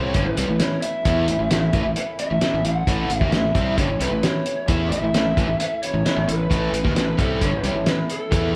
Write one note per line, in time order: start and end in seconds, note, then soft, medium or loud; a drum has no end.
0.00 0.13 C2 medium
0.00 0.14 C3 medium
0.00 0.14 G3 medium
0.00 0.14 C4 medium
0.00 0.37 C#4 soft
0.00 0.37 E4 soft
0.00 0.39 C#5 medium
0.06 0.36 A3 soft
0.14 0.25 G1 medium
0.14 0.25 G2 medium
0.14 0.25 D3 medium
0.14 kick medium
0.14 closed hi-hat medium
0.26 0.36 A1 medium
0.26 0.36 A2 medium
0.26 0.37 E3 medium
0.35 0.48 C2 medium
0.35 0.48 C3 medium
0.35 0.48 E3 medium
0.35 0.48 G3 loud
0.35 0.49 A3 medium
0.35 0.49 C#4 medium
0.35 0.57 B4 medium
0.35 closed hi-hat medium
0.40 0.47 E4 medium
0.48 0.60 A1 medium
0.48 0.60 A2 medium
0.48 0.61 E3 medium
0.48 0.60 A3 soft
0.48 0.60 C#4 soft
0.48 0.60 E4 medium
0.59 0.83 A2 medium
0.59 0.81 E3 medium
0.59 0.82 A3 medium
0.59 0.83 C#4 medium
0.59 0.84 E4 medium
0.59 0.82 C#5 medium
0.59 snare loud
0.59 closed hi-hat medium
0.82 1.04 E3 soft
0.82 1.04 A3 soft
0.82 1.04 C#4 soft
0.82 1.05 E4 medium
0.82 2.15 E5 loud
0.82 closed hi-hat medium
1.04 1.27 E2 medium
1.04 1.16 A2 medium
1.04 1.17 E3 medium
1.04 1.27 E3 medium
1.04 1.17 A3 medium
1.04 1.28 B3 medium
1.04 1.17 C#4 medium
1.04 1.28 E4 medium
1.04 1.15 E4 medium
1.04 kick medium
1.04 closed hi-hat medium
1.17 1.27 A3 soft
1.17 1.29 C#4 soft
1.17 1.28 E4 soft
1.28 1.39 A1 medium
1.28 1.38 A2 soft
1.28 1.39 E3 medium
1.28 1.38 E3 medium
1.28 1.40 A3 medium
1.28 1.38 C#4 medium
1.28 1.36 E4 medium
1.28 closed hi-hat medium
1.38 1.51 A1 medium
1.38 1.49 A2 medium
1.38 1.50 E3 medium
1.38 1.49 A3 soft
1.38 1.50 C#4 medium
1.38 1.50 E4 medium
1.49 1.73 A1 medium
1.49 1.61 A2 medium
1.49 1.69 A2 medium
1.49 1.62 E3 medium
1.49 1.69 E3 medium
1.49 1.62 A3 medium
1.49 1.61 C#4 loud
1.49 1.59 E4 loud
1.49 snare loud
1.49 closed hi-hat medium
1.60 1.71 A3 medium
1.60 1.72 C#4 medium
1.60 1.73 E4 medium
1.71 1.84 A1 medium
1.71 1.84 A2 medium
1.71 1.84 E3 medium
1.71 1.84 A3 medium
1.71 1.82 C#4 medium
1.71 1.80 E4 medium
1.71 kick medium
1.71 closed hi-hat medium
1.82 1.96 A2 medium
1.82 2.16 A3 soft
1.82 2.18 C#4 soft
1.82 2.17 E4 medium
1.86 1.96 A1 medium
1.86 1.97 E3 medium
1.96 muted overdriven electric guitar stroke soft
1.96 muted fingered electric bass stroke soft
1.96 closed hi-hat medium
2.17 2.29 E3 medium
2.17 2.30 A3 medium
2.17 2.29 C#4 medium
2.17 2.27 E4 medium
2.17 2.66 E5 medium
2.17 closed hi-hat medium
2.29 2.41 A1 medium
2.29 2.41 A2 soft
2.29 2.42 E3 medium
2.29 2.39 A3 soft
2.29 2.40 C#4 soft
2.29 2.40 E4 soft
2.39 2.63 A2 medium
2.39 2.62 E3 medium
2.39 2.63 A3 medium
2.39 2.64 C#4 medium
2.39 2.64 E4 medium
2.39 muted fingered electric bass stroke soft
2.39 muted overdriven electric guitar stroke soft
2.39 snare loud
2.39 closed hi-hat medium
2.53 2.64 A1 medium
2.53 2.64 A2 soft
2.53 2.64 E3 medium
2.63 2.86 A1 medium
2.63 2.83 A2 medium
2.63 2.85 E3 soft
2.63 2.83 E3 medium
2.63 2.86 A3 soft
2.63 2.87 C#4 soft
2.63 2.87 E4 soft
2.63 3.18 F#5 medium
2.63 closed hi-hat medium
2.86 3.08 A1 medium
2.86 3.09 A2 medium
2.86 3.10 A2 medium
2.86 3.07 E3 medium
2.86 3.10 E3 medium
2.86 3.09 A3 medium
2.86 3.10 A3 medium
2.86 3.10 C#4 medium
2.86 3.11 E4 medium
2.86 kick loud
2.86 closed hi-hat medium
3.08 3.20 A1 medium
3.08 3.21 A2 soft
3.08 3.21 E3 medium
3.08 3.21 A3 medium
3.08 3.22 C#4 medium
3.08 3.20 E4 medium
3.08 closed hi-hat medium
3.18 3.32 D#2 medium
3.18 3.32 D#3 medium
3.18 3.32 A#3 medium
3.18 3.33 E4 soft
3.18 3.32 E5 medium
3.18 kick loud
3.24 3.32 A3 soft
3.24 3.33 C#4 medium
3.32 3.54 A1 medium
3.32 3.51 A2 medium
3.32 3.44 A2 medium
3.32 3.44 E3 medium
3.32 3.51 E3 medium
3.32 3.45 A3 medium
3.32 3.43 C#4 medium
3.32 3.42 E4 medium
3.32 3.75 E5 medium
3.32 snare loud
3.32 closed hi-hat medium
3.43 3.54 A3 soft
3.43 3.56 C#4 soft
3.43 3.55 E4 medium
3.55 3.76 C2 medium
3.55 3.77 C3 medium
3.55 3.67 E3 medium
3.55 3.77 G3 medium
3.55 3.67 A3 medium
3.55 3.77 C4 medium
3.55 3.66 C#4 soft
3.55 3.64 E4 medium
3.55 kick medium
3.55 closed hi-hat medium
3.65 4.00 A3 soft
3.65 4.01 C#4 soft
3.65 4.00 E4 soft
3.77 3.88 G1 medium
3.77 3.89 G2 medium
3.77 3.89 D3 medium
3.77 4.02 C#5 medium
3.77 kick medium
3.77 closed hi-hat medium
3.88 3.99 A1 medium
3.88 4.00 A2 soft
3.88 4.01 E3 medium
4.00 4.11 C2 medium
4.00 4.11 C3 medium
4.00 4.12 E3 medium
4.00 4.11 G3 loud
4.00 4.12 A3 medium
4.00 4.11 C#4 medium
4.00 4.09 E4 medium
4.00 4.22 B4 medium
4.00 closed hi-hat medium
4.10 4.22 A1 medium
4.10 4.23 A2 medium
4.10 4.23 E3 medium
4.10 4.21 A3 soft
4.10 4.22 C#4 soft
4.10 4.22 E4 medium
4.21 4.45 A2 medium
4.21 4.43 E3 medium
4.21 4.44 A3 medium
4.21 4.46 C#4 medium
4.21 4.46 E4 medium
4.21 4.66 C#5 medium
4.21 snare loud
4.21 closed hi-hat medium
4.44 4.67 E3 soft
4.44 4.67 A3 soft
4.44 4.68 C#4 medium
4.44 closed hi-hat medium
4.67 4.90 E2 medium
4.67 4.91 A2 medium
4.67 4.91 E3 medium
4.67 4.89 E3 medium
4.67 4.91 A3 medium
4.67 4.91 B3 medium
4.67 4.91 C#4 medium
4.67 4.91 E4 medium
4.67 4.92 E4 medium
4.67 4.89 E5 medium
4.67 kick loud
4.67 closed hi-hat medium
4.90 5.01 A1 medium
4.90 5.02 A2 medium
4.90 5.03 E3 medium
4.90 5.03 A3 soft
4.90 5.03 C#4 medium
4.90 5.01 E4 medium
4.90 5.82 E5 medium
4.90 closed hi-hat medium
5.02 5.13 A1 medium
5.02 5.14 A2 medium
5.02 5.14 E3 medium
5.02 5.14 A3 soft
5.02 5.15 C#4 soft
5.02 5.14 E4 medium
5.13 5.35 A1 medium
5.13 5.26 A2 medium
5.13 5.33 A2 medium
5.13 5.26 E3 medium
5.13 5.33 E3 medium
5.13 5.26 A3 medium
5.13 5.26 C#4 medium
5.13 5.24 E4 medium
5.13 snare loud
5.13 closed hi-hat medium
5.26 5.38 C#4 medium
5.26 5.37 E4 soft
5.37 5.47 A1 medium
5.37 5.48 A2 medium
5.37 5.48 E3 medium
5.37 5.49 A3 medium
5.37 5.50 C#4 medium
5.37 5.47 E4 medium
5.37 kick loud
5.37 closed hi-hat medium
5.47 5.58 A1 medium
5.47 5.58 A2 medium
5.47 5.60 E3 medium
5.47 5.84 C#4 soft
5.47 5.83 E4 soft
5.52 5.83 A3 soft
5.58 muted fingered electric bass stroke soft
5.58 muted overdriven electric guitar stroke soft
5.58 closed hi-hat medium
5.83 5.94 E3 medium
5.83 5.95 A3 medium
5.83 5.95 C#4 medium
5.83 5.93 E4 medium
5.83 6.25 C#5 medium
5.83 closed hi-hat medium
5.94 6.04 A1 medium
5.94 6.04 A2 medium
5.94 6.05 E3 medium
5.94 6.04 A3 soft
5.94 6.06 C#4 soft
5.94 6.05 E4 soft
6.05 6.28 A2 medium
6.05 6.26 E3 medium
6.05 6.27 A3 medium
6.05 6.28 C#4 medium
6.05 6.29 E4 medium
6.05 muted overdriven electric guitar stroke soft
6.05 muted fingered electric bass stroke soft
6.05 snare loud
6.05 closed hi-hat medium
6.16 6.27 A1 medium
6.16 6.26 A2 medium
6.16 6.27 E3 medium
6.27 6.49 A1 medium
6.27 6.46 A2 medium
6.27 6.49 E3 soft
6.27 6.47 E3 medium
6.27 6.50 A3 medium
6.27 6.50 C#4 soft
6.27 6.51 E4 medium
6.27 6.92 B4 medium
6.27 closed hi-hat medium
6.49 6.72 A1 medium
6.49 6.73 A2 medium
6.49 6.71 E3 medium
6.49 6.73 E3 medium
6.49 6.73 A3 medium
6.49 6.73 A3 loud
6.49 6.73 C#4 medium
6.49 6.74 E4 medium
6.49 kick medium
6.49 closed hi-hat medium
6.72 6.84 A1 medium
6.72 6.83 A2 medium
6.72 6.84 E3 medium
6.72 6.85 E3 medium
6.72 6.85 A3 medium
6.72 6.85 C#4 medium
6.72 6.83 E4 medium
6.72 closed hi-hat medium
6.84 6.95 D#2 medium
6.84 6.95 D#3 medium
6.84 6.96 A3 soft
6.84 6.95 A#3 medium
6.84 6.96 C#4 soft
6.84 6.96 E4 soft
6.84 kick loud
6.84 snare soft
6.95 7.17 A1 medium
6.95 7.14 A2 medium
6.95 7.07 A2 medium
6.95 7.14 E3 medium
6.95 7.08 E3 medium
6.95 7.08 A3 medium
6.95 7.08 C#4 medium
6.95 7.06 E4 medium
6.95 7.18 B4 medium
6.95 snare loud
6.95 closed hi-hat medium
7.07 7.18 A3 soft
7.07 7.19 C#4 soft
7.07 7.19 E4 medium
7.17 7.40 C2 medium
7.17 7.40 C3 medium
7.17 7.30 E3 medium
7.17 7.41 G3 medium
7.17 7.30 A3 medium
7.17 7.41 C4 medium
7.17 7.30 C#4 medium
7.17 7.40 A4 medium
7.17 kick loud
7.17 closed hi-hat medium
7.22 7.29 E4 medium
7.30 7.64 A3 soft
7.30 7.65 C#4 soft
7.30 7.64 E4 soft
7.41 7.51 G1 medium
7.41 7.52 G2 medium
7.41 7.52 D3 medium
7.41 7.59 C#5 medium
7.41 kick medium
7.41 closed hi-hat medium
7.52 7.63 A1 medium
7.52 7.64 A2 soft
7.52 7.64 E3 medium
7.57 7.64 B4 medium
7.63 7.73 C2 medium
7.63 7.75 C3 loud
7.63 7.76 E3 medium
7.63 7.75 G3 loud
7.63 7.76 A3 medium
7.63 7.76 C#4 medium
7.63 7.74 E4 medium
7.63 7.86 C#5 medium
7.63 closed hi-hat soft
7.74 7.85 A1 medium
7.74 7.87 A2 medium
7.74 7.87 E3 medium
7.74 7.88 C#4 soft
7.74 7.87 E4 medium
7.79 7.87 A3 soft
7.86 8.10 A2 medium
7.86 8.08 E3 medium
7.86 8.09 A3 medium
7.86 8.10 C#4 medium
7.86 8.11 E4 medium
7.86 7.94 B4 medium
7.86 snare loud
7.86 closed hi-hat medium
8.09 8.31 E3 soft
8.09 8.31 A3 medium
8.09 8.31 C#4 medium
8.09 8.32 E4 soft
8.09 8.56 A4 medium
8.09 closed hi-hat medium
8.31 8.52 E2 medium
8.31 8.54 A2 medium
8.31 8.53 E3 medium
8.31 8.54 E3 medium
8.31 8.54 A3 medium
8.31 8.55 B3 medium
8.31 8.55 C#4 medium
8.31 8.55 E4 medium
8.31 8.56 E4 medium
8.31 kick loud
8.31 closed hi-hat medium